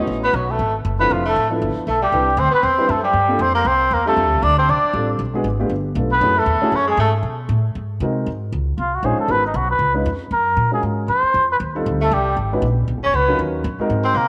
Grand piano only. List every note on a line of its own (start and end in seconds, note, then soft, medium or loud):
0.00 0.31 A3 medium
0.00 0.32 B3 medium
0.00 0.32 C#4 medium
0.00 0.32 E4 medium
0.00 0.32 F#4 medium
0.99 1.34 F3 medium
0.99 1.34 C4 medium
0.99 1.34 D4 medium
0.99 1.34 E4 medium
0.99 1.35 A4 medium
1.50 1.85 F3 medium
1.50 1.85 B3 medium
1.50 1.85 D4 medium
1.50 1.85 E4 medium
1.50 1.85 A4 medium
2.12 2.26 G3 medium
2.12 2.26 C4 medium
2.12 2.26 D4 medium
2.12 2.26 E4 medium
2.12 2.27 B4 medium
2.78 2.88 G3 medium
2.78 2.88 C4 medium
2.78 2.88 D4 medium
2.78 2.88 E4 medium
2.78 2.89 B4 medium
3.28 3.39 G3 medium
3.28 3.39 A#3 medium
3.28 3.39 D4 medium
3.28 3.39 F4 medium
3.28 3.40 A4 medium
4.06 4.40 G3 medium
4.06 4.41 C4 medium
4.06 4.41 D4 medium
4.06 4.41 F4 medium
4.06 4.41 G4 medium
4.94 5.20 G3 medium
4.94 5.20 C4 medium
4.94 5.20 D4 medium
4.94 5.20 F4 medium
4.94 5.20 A4 medium
5.34 5.44 G#3 medium
5.34 5.44 B3 medium
5.34 5.44 D4 medium
5.34 5.44 F#4 medium
5.34 5.45 G#4 medium
5.59 5.70 A3 medium
5.59 5.70 B3 medium
5.59 5.70 D4 medium
5.59 5.70 F4 medium
5.59 5.70 G4 medium
5.96 6.10 A3 medium
5.96 6.10 B3 medium
5.96 6.10 D4 medium
5.96 6.10 F4 medium
5.96 6.10 A4 medium
6.22 6.35 A3 medium
6.22 6.35 C#4 medium
6.22 6.36 E4 medium
6.22 6.36 F#4 medium
6.22 6.36 G#4 medium
6.61 6.72 A3 medium
6.61 6.72 C#4 medium
6.61 6.72 E4 medium
6.61 6.72 F#4 medium
6.61 6.72 G#4 medium
8.02 8.27 G#3 medium
8.02 8.27 C4 medium
8.02 8.27 D#4 medium
8.02 8.27 F#4 medium
8.02 8.28 A#4 medium
9.04 9.27 G#3 medium
9.04 9.29 C#4 medium
9.04 9.28 D#4 medium
9.04 9.29 F4 medium
9.04 9.30 C5 medium
9.28 9.42 G#3 medium
9.28 9.42 B3 medium
9.28 9.42 D#4 medium
9.28 9.43 F#4 medium
9.28 9.42 A#4 medium
9.94 10.04 G#3 medium
9.94 10.04 C#4 medium
9.94 10.05 D#4 medium
9.94 10.05 F4 medium
9.94 10.05 B4 medium
10.71 11.06 G#3 medium
10.71 11.06 C#4 medium
10.71 11.06 F4 medium
10.71 11.06 F#4 medium
10.71 11.06 A#4 medium
11.75 12.09 G3 medium
11.75 12.09 C4 medium
11.75 12.09 D#4 medium
11.75 12.10 F4 medium
11.75 12.10 A4 medium
12.53 12.62 G#3 medium
12.53 12.62 C#4 medium
12.53 12.62 D#4 medium
12.53 12.62 F#4 medium
12.53 12.62 B4 medium
13.28 13.63 F#3 medium
13.28 13.63 C#4 medium
13.28 13.63 D#4 medium
13.28 13.63 F4 medium
13.28 13.63 A#4 medium
13.80 14.14 G#3 medium
13.80 14.14 C4 medium
13.80 14.14 D#4 medium
13.80 14.15 F#4 medium
13.80 14.15 A#4 medium